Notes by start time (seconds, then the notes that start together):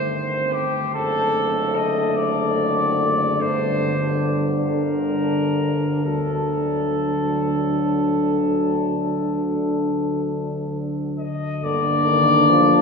Already playing: G1 D#3 A3 C4 C5
0.53 G4
0.93 F#1 D3 A3 C4 A4
1.76 D#5
2.16 D5
3.40 G1 G3 D4 C5
4.70 A#4
6.05 D2 D3 F#3 D4 A4
11.18 D#5
11.62 G1 D3 A#3 D4 D5
12.05 D#3
12.49 F3